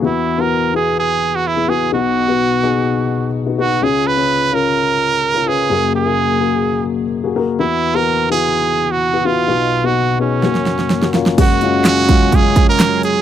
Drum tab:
CC |----------------|----------------|----------------|----------------|
HH |----------------|----------------|----------------|----------------|
CP |----------------|----------------|----------------|----------------|
SD |----------------|----------------|----------------|----------------|
BD |----------------|----------------|----------------|----------------|

CC |----------------|----------------|x---------------|
HH |----------------|----------------|x-x-x-x-x-x-x-x-|
CP |----------------|----------------|----x-------x---|
SD |----------------|--------oooooooo|----o-------o---|
BD |----------------|----------------|o-----o-o-o-----|